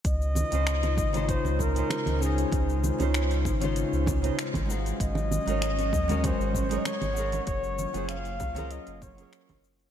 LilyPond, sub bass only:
\new Staff \with { instrumentName = "Sub bass" } { \clef bass \time 4/4 \key des \major \tempo 4 = 97 des,8 r16 des,8. aes,,8 r16 des,8 r8 des,8 r16 | des,8 r16 des,8. aes,,8 r16 des,8 r8 aes,,8 r16 | aes,,8 r16 aes,,8. ees,8 r16 aes,,8 r8 aes,,8 r16 | ges,,8 r16 ges,,8. des,8 r16 ges,,8 r8 ges,,8 r16 | }